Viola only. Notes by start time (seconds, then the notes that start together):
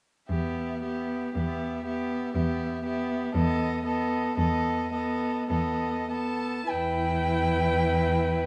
0.30 B3
0.83 B3
1.36 B3
1.85 B3
2.35 B3
2.84 B3
3.35 B3
3.85 B3
4.37 B3
4.93 B3
5.50 B3
6.11 B3
6.70 E4